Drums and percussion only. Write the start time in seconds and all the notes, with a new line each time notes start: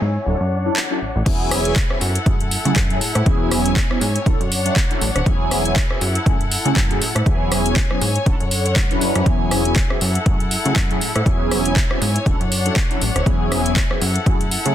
0.76 clap
1.26 kick, closed hi-hat, crash
1.51 cross-stick, open hi-hat
1.65 closed hi-hat
1.76 kick, clap, closed hi-hat
1.90 cross-stick
2.01 open hi-hat
2.15 closed hi-hat
2.26 kick, closed hi-hat
2.40 closed hi-hat
2.51 open hi-hat
2.65 closed hi-hat
2.76 kick, clap, closed hi-hat
2.90 closed hi-hat
3.01 open hi-hat
3.15 cross-stick, closed hi-hat
3.26 kick, closed hi-hat
3.51 cross-stick, open hi-hat
3.66 closed hi-hat
3.76 kick, clap, closed hi-hat
3.91 cross-stick
4.01 open hi-hat
4.16 closed hi-hat
4.26 kick, closed hi-hat
4.41 closed hi-hat
4.52 open hi-hat
4.66 closed hi-hat
4.76 kick, clap, closed hi-hat
4.91 closed hi-hat
5.01 open hi-hat
5.16 cross-stick, closed hi-hat
5.26 kick, closed hi-hat
5.51 cross-stick, open hi-hat
5.65 closed hi-hat
5.76 kick, clap, closed hi-hat
5.90 cross-stick
6.01 open hi-hat
6.15 closed hi-hat
6.26 kick, closed hi-hat
6.41 closed hi-hat
6.51 open hi-hat
6.66 closed hi-hat
6.76 kick, clap, closed hi-hat
6.91 closed hi-hat
7.02 open hi-hat
7.16 cross-stick, closed hi-hat
7.26 kick, closed hi-hat
7.52 cross-stick, open hi-hat
7.66 closed hi-hat
7.76 kick, clap, closed hi-hat
7.91 cross-stick
8.01 open hi-hat
8.16 closed hi-hat
8.26 kick, closed hi-hat
8.40 closed hi-hat
8.51 open hi-hat
8.66 closed hi-hat
8.76 kick, clap, closed hi-hat
8.91 closed hi-hat
9.01 open hi-hat
9.15 cross-stick, closed hi-hat
9.26 kick, closed hi-hat
9.51 cross-stick, open hi-hat
9.65 closed hi-hat
9.76 kick, clap, closed hi-hat
9.90 cross-stick
10.01 open hi-hat
10.15 closed hi-hat
10.26 kick, closed hi-hat
10.40 closed hi-hat
10.51 open hi-hat
10.65 closed hi-hat
10.76 kick, clap, closed hi-hat
10.91 closed hi-hat
11.01 open hi-hat
11.16 cross-stick, closed hi-hat
11.26 kick, closed hi-hat
11.51 cross-stick, open hi-hat
11.65 closed hi-hat
11.76 kick, clap, closed hi-hat
11.91 cross-stick
12.02 open hi-hat
12.16 closed hi-hat
12.26 kick, closed hi-hat
12.41 closed hi-hat
12.52 open hi-hat
12.66 closed hi-hat
12.76 kick, clap, closed hi-hat
12.91 closed hi-hat
13.01 open hi-hat
13.16 cross-stick, closed hi-hat
13.26 kick, closed hi-hat
13.52 cross-stick, open hi-hat
13.66 closed hi-hat
13.76 kick, clap, closed hi-hat
13.91 cross-stick
14.02 open hi-hat
14.16 closed hi-hat
14.26 kick, closed hi-hat
14.41 closed hi-hat
14.51 open hi-hat
14.66 closed hi-hat